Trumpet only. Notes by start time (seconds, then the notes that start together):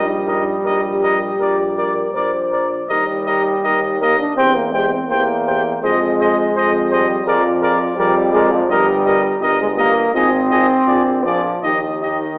0.28 D#5
0.66 D#5
1.03 D#5
1.41 D5
1.78 D5
2.16 D5
2.52 D5
2.89 D#5
3.26 D#5
3.64 D#5
4.02 D#5
4.38 G5
4.74 G5
5.11 G5
5.47 G5
5.84 D#5
6.20 D#5
6.57 D#5
6.92 D#5
7.28 D5
7.63 D5
7.99 D5
8.33 D5
8.70 D#5
9.05 D#5
9.42 D#5
9.78 D#5
10.14 D#5
10.51 D#5
10.87 D5
11.25 D5
11.63 D#5
12.02 D#5